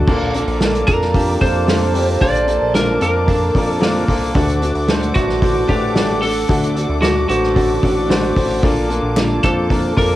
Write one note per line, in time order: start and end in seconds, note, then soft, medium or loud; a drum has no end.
0.07 0.45 A#1 loud
0.07 0.84 A#2 medium
0.07 0.34 A#3 medium
0.07 0.29 A#3 loud
0.07 0.34 D4 medium
0.07 0.29 D4 loud
0.07 0.29 F4 loud
0.07 0.34 F4 medium
0.07 0.29 A4 loud
0.07 0.32 A4 loud
0.07 4.31 A#4 medium
0.07 4.31 A5 medium
0.07 10.16 D6 medium
0.07 kick loud
0.07 crash loud
0.34 0.55 A#3 medium
0.34 0.55 D4 medium
0.34 0.61 D4 medium
0.34 0.56 F4 medium
0.34 0.62 F4 medium
0.34 0.61 A4 medium
0.34 0.56 A4 loud
0.34 hi-hat pedal medium
0.34 open hi-hat medium
0.47 0.85 A#1 loud
0.47 open hi-hat medium
0.60 0.87 A#3 medium
0.60 0.82 A#3 medium
0.60 0.82 D4 medium
0.60 0.88 D4 medium
0.60 0.82 F4 medium
0.60 0.88 F4 medium
0.60 0.82 A4 loud
0.60 0.86 A4 medium
0.60 snare loud
0.60 hi-hat pedal medium
0.60 open hi-hat loud
0.74 hi-hat pedal medium
0.87 1.38 F2 medium
0.87 1.09 A#3 medium
0.87 1.09 D4 medium
0.87 1.14 D4 medium
0.87 1.09 F4 medium
0.87 1.15 F4 medium
0.87 1.14 A4 medium
0.87 1.09 A4 medium
0.87 1.37 A#4 loud
0.87 kick loud
0.87 hi-hat pedal medium
0.87 open hi-hat medium
1.01 snare soft
1.14 1.41 A#3 loud
1.14 1.36 A#3 medium
1.14 1.36 D4 medium
1.14 1.42 D4 loud
1.14 1.36 F4 medium
1.14 1.41 F4 loud
1.14 1.36 G4 medium
1.14 1.39 A4 loud
1.14 kick loud
1.14 hi-hat pedal medium
1.14 open hi-hat loud
1.40 2.17 F2 loud
1.40 1.62 A#3 loud
1.40 1.62 D4 medium
1.40 1.67 D4 soft
1.40 1.62 F4 medium
1.40 1.68 F4 medium
1.40 1.67 A4 medium
1.40 1.62 A4 loud
1.40 2.24 C5 loud
1.40 kick medium
1.40 hi-hat pedal medium
1.40 open hi-hat medium
1.67 1.94 A#3 medium
1.67 1.89 A#3 loud
1.67 1.89 D4 medium
1.67 1.95 D4 medium
1.67 1.89 F4 medium
1.67 1.94 F4 medium
1.67 1.89 A4 loud
1.67 1.92 A4 medium
1.67 snare loud
1.67 hi-hat pedal medium
1.67 open hi-hat loud
1.94 2.16 A#3 medium
1.94 2.16 D4 medium
1.94 2.21 D4 medium
1.94 2.16 F4 medium
1.94 2.22 F4 medium
1.94 2.16 G4 medium
1.94 2.21 A4 medium
1.94 hi-hat pedal medium
1.94 open hi-hat medium
2.08 open hi-hat soft
2.21 2.59 A#1 loud
2.21 2.98 A#2 medium
2.21 2.48 A#3 medium
2.21 2.42 A#3 loud
2.21 2.43 D4 medium
2.21 2.48 D4 medium
2.21 2.43 F4 medium
2.21 2.48 F4 loud
2.21 2.46 A4 loud
2.21 2.43 C5 loud
2.21 2.71 D5 loud
2.21 kick loud
2.21 hi-hat pedal medium
2.21 open hi-hat loud
2.35 hi-hat pedal medium
2.47 2.69 A#3 medium
2.47 2.69 D4 medium
2.47 2.74 D4 medium
2.47 2.69 F4 medium
2.47 2.75 F4 medium
2.47 2.75 A4 medium
2.47 2.69 A4 medium
2.47 hi-hat pedal medium
2.47 open hi-hat medium
2.62 2.99 A#1 loud
2.74 3.01 A#3 medium
2.74 2.96 A#3 medium
2.74 2.96 D4 medium
2.74 3.02 D4 medium
2.74 2.96 F4 medium
2.74 3.01 F4 medium
2.74 2.96 A4 medium
2.74 2.99 A4 medium
2.74 3.01 A#4 medium
2.74 snare loud
2.74 hi-hat pedal medium
2.74 open hi-hat loud
3.01 3.51 F2 medium
3.01 3.22 A#3 medium
3.01 3.23 D4 medium
3.01 3.27 D4 medium
3.01 3.23 F4 medium
3.01 3.28 F4 medium
3.01 3.28 A4 medium
3.01 3.23 A4 medium
3.01 3.70 A#4 medium
3.01 hi-hat pedal medium
3.01 open hi-hat medium
3.27 3.55 A#3 medium
3.27 3.49 A#3 medium
3.27 3.49 D4 medium
3.27 3.55 D4 loud
3.27 3.49 F4 medium
3.27 3.55 F4 loud
3.27 3.49 A4 medium
3.27 3.53 A4 loud
3.27 kick loud
3.27 hi-hat pedal medium
3.27 open hi-hat loud
3.54 4.05 F2 loud
3.54 3.76 A#3 loud
3.54 3.76 D4 medium
3.54 3.81 D4 medium
3.54 3.76 F4 medium
3.54 3.82 F4 medium
3.54 3.81 A4 medium
3.54 3.76 A4 loud
3.54 kick medium
3.54 hi-hat pedal medium
3.54 open hi-hat medium
3.70 4.05 A4 medium
3.80 4.08 A#3 medium
3.80 4.02 A#3 loud
3.80 4.03 D4 loud
3.80 4.08 D4 medium
3.80 4.03 F4 loud
3.80 4.08 F4 medium
3.80 4.03 A4 loud
3.80 4.06 A4 medium
3.80 snare loud
3.80 hi-hat pedal medium
3.80 open hi-hat medium
4.07 4.33 C2 medium
4.07 4.29 A#3 loud
4.07 4.29 D4 medium
4.07 4.34 D4 soft
4.07 4.30 F4 medium
4.07 4.36 F4 medium
4.07 4.35 A4 medium
4.07 4.30 A4 loud
4.07 kick medium
4.07 hi-hat pedal medium
4.07 open hi-hat medium
4.22 open hi-hat soft
4.34 4.73 D2 loud
4.34 4.61 D3 medium
4.34 5.11 D3 medium
4.34 4.56 A3 loud
4.34 4.62 A3 medium
4.34 4.56 D4 loud
4.34 4.62 D4 loud
4.34 4.56 F#4 loud
4.34 4.62 F#4 loud
4.34 4.56 A4 loud
4.34 8.59 A4 medium
4.34 4.60 A4 loud
4.34 8.59 F#5 medium
4.34 kick loud
4.34 hi-hat pedal medium
4.34 open hi-hat loud
4.49 hi-hat pedal medium
4.61 4.83 A3 medium
4.61 4.83 D4 medium
4.61 4.88 D4 medium
4.61 4.83 F#4 medium
4.61 4.89 F#4 medium
4.61 4.88 A4 medium
4.61 4.83 A4 loud
4.61 hi-hat pedal medium
4.61 open hi-hat medium
4.75 5.13 D2 medium
4.75 open hi-hat medium
4.88 5.15 A3 medium
4.88 5.10 A3 medium
4.88 5.10 D4 medium
4.88 5.16 D4 medium
4.88 5.10 F#4 medium
4.88 5.15 F#4 medium
4.88 5.13 A4 medium
4.88 5.10 C5 loud
4.88 snare loud
4.88 hi-hat pedal medium
4.88 open hi-hat loud
5.02 hi-hat pedal medium
5.15 5.65 A1 loud
5.15 5.36 A3 medium
5.15 5.36 D4 medium
5.15 5.42 D4 medium
5.15 5.36 F#4 medium
5.15 5.68 F#4 loud
5.15 5.43 F#4 medium
5.15 5.42 A4 medium
5.15 5.36 A4 medium
5.15 kick loud
5.15 hi-hat pedal medium
5.15 open hi-hat medium
5.29 snare soft
5.42 5.69 D3 medium
5.42 5.63 A3 medium
5.42 5.69 A3 loud
5.42 5.63 D4 medium
5.42 5.69 D4 loud
5.42 5.63 F#4 medium
5.42 5.69 F#4 loud
5.42 5.67 A4 loud
5.42 5.63 C5 medium
5.42 kick loud
5.42 hi-hat pedal medium
5.42 open hi-hat medium
5.68 6.45 A1 medium
5.68 5.90 A3 loud
5.68 5.90 D4 loud
5.68 5.90 F#4 medium
5.68 5.96 F#4 medium
5.68 6.24 G4 loud
5.68 5.95 A4 medium
5.68 5.90 A4 loud
5.68 kick medium
5.68 hi-hat pedal medium
5.68 open hi-hat medium
5.95 6.16 A3 loud
5.95 6.22 A3 medium
5.95 6.16 D4 loud
5.95 6.23 D4 medium
5.95 6.16 F#4 loud
5.95 6.23 F#4 medium
5.95 6.17 A4 loud
5.95 6.21 A4 medium
5.95 snare loud
5.95 hi-hat pedal medium
5.95 open hi-hat medium
6.22 6.43 A3 medium
6.22 6.43 D4 medium
6.22 6.49 D4 soft
6.22 6.44 F#4 medium
6.22 6.49 F#4 medium
6.22 6.98 A4 loud
6.22 6.49 A4 medium
6.22 6.44 A4 medium
6.22 hi-hat pedal medium
6.22 open hi-hat medium
6.36 open hi-hat soft
6.48 6.87 D2 loud
6.48 6.76 D3 medium
6.48 7.25 D3 medium
6.48 6.70 A3 loud
6.48 6.76 A3 medium
6.48 6.70 D4 medium
6.48 6.76 D4 medium
6.48 6.70 F#4 loud
6.48 6.76 F#4 medium
6.48 6.70 A4 loud
6.48 6.74 A4 loud
6.48 kick loud
6.48 hi-hat pedal medium
6.48 open hi-hat loud
6.63 hi-hat pedal medium
6.75 6.97 A3 medium
6.75 6.97 D4 medium
6.75 7.02 D4 soft
6.75 6.97 F#4 medium
6.75 7.03 F#4 medium
6.75 7.02 A4 medium
6.75 6.97 A4 medium
6.75 hi-hat pedal medium
6.75 open hi-hat medium
6.89 7.27 D2 loud
7.02 7.29 A3 medium
7.02 7.24 A3 medium
7.02 7.24 D4 medium
7.02 7.30 D4 medium
7.02 7.28 F#4 medium
7.02 7.24 F#4 medium
7.02 7.29 F#4 medium
7.02 7.24 A4 medium
7.02 7.27 A4 medium
7.02 snare loud
7.02 hi-hat pedal medium
7.02 open hi-hat loud
7.28 7.79 A1 medium
7.28 7.51 A3 medium
7.28 7.51 D4 medium
7.28 7.55 D4 soft
7.28 8.32 F#4 medium
7.28 7.51 F#4 medium
7.28 7.56 F#4 medium
7.28 7.56 A4 medium
7.28 7.51 C5 medium
7.28 hi-hat pedal medium
7.28 open hi-hat medium
7.43 snare soft
7.55 7.82 D3 loud
7.55 7.83 A3 medium
7.55 7.77 A3 medium
7.55 7.83 D4 medium
7.55 7.77 D4 medium
7.55 7.77 F#4 medium
7.55 7.83 F#4 loud
7.55 7.78 A4 medium
7.55 7.81 A4 loud
7.55 kick loud
7.55 hi-hat pedal medium
7.55 open hi-hat loud
7.82 8.33 A1 loud
7.82 8.04 A3 loud
7.82 8.04 D4 medium
7.82 8.08 D4 soft
7.82 8.04 F#4 medium
7.82 8.10 F#4 medium
7.82 8.09 A4 medium
7.82 8.04 A4 loud
7.82 kick medium
7.82 hi-hat pedal medium
7.82 open hi-hat medium
8.08 8.36 A3 medium
8.08 8.31 A3 loud
8.08 8.36 D4 medium
8.08 8.31 D4 loud
8.08 8.31 F#4 loud
8.08 8.36 F#4 medium
8.08 8.34 A4 medium
8.08 8.31 C5 loud
8.08 snare loud
8.08 hi-hat pedal medium
8.08 open hi-hat medium
8.36 8.61 A1 medium
8.36 8.58 A3 medium
8.36 8.58 D4 medium
8.36 8.62 D4 medium
8.36 8.58 F#4 medium
8.36 8.64 F#4 medium
8.36 8.63 A4 medium
8.36 8.58 C5 loud
8.36 kick medium
8.36 hi-hat pedal medium
8.36 open hi-hat medium
8.62 9.00 A#1 loud
8.62 9.39 A#2 medium
8.62 8.89 A#3 medium
8.62 8.84 A#3 loud
8.62 10.16 A#3 medium
8.62 8.84 D4 loud
8.62 8.90 D4 medium
8.62 8.84 F4 loud
8.62 8.90 F4 loud
8.62 8.84 A4 loud
8.62 8.88 A4 loud
8.62 10.16 A5 medium
8.62 kick loud
8.62 hi-hat pedal medium
8.62 open hi-hat medium
8.89 9.11 A#3 medium
8.89 9.11 D4 medium
8.89 9.16 D4 soft
8.89 9.11 F4 medium
8.89 9.17 F4 medium
8.89 9.16 A4 medium
8.89 9.11 A4 loud
8.89 hi-hat pedal medium
8.89 open hi-hat medium
9.03 9.40 A#1 loud
9.16 9.43 A#3 medium
9.16 9.38 A#3 medium
9.16 9.38 D4 medium
9.16 9.44 D4 medium
9.16 9.38 F4 medium
9.16 9.44 F4 medium
9.16 9.38 A4 medium
9.16 9.42 A4 medium
9.16 snare loud
9.16 clap medium
9.16 hi-hat pedal medium
9.16 open hi-hat loud
9.43 9.93 F2 medium
9.43 9.65 A#3 medium
9.43 9.65 D4 medium
9.43 9.69 D4 medium
9.43 9.65 F4 medium
9.43 9.70 F4 medium
9.43 9.70 A4 medium
9.43 9.98 A4 loud
9.43 9.65 C5 medium
9.43 kick loud
9.43 clap medium
9.43 hi-hat pedal medium
9.43 open hi-hat medium
9.69 9.97 A#3 loud
9.69 9.91 A#3 medium
9.69 9.97 D4 loud
9.69 9.91 D4 medium
9.69 9.92 F4 medium
9.69 9.97 F4 medium
9.69 9.95 A4 loud
9.69 9.92 A#4 medium
9.69 kick loud
9.69 hi-hat pedal medium
9.69 open hi-hat loud
9.96 10.16 F2 loud
9.96 10.16 A#3 loud
9.96 10.16 D4 medium
9.96 10.16 F4 medium
9.96 10.16 A4 medium
9.96 10.16 A4 loud
9.96 10.16 A#4 loud
9.96 kick medium
9.96 hi-hat pedal medium
9.96 open hi-hat medium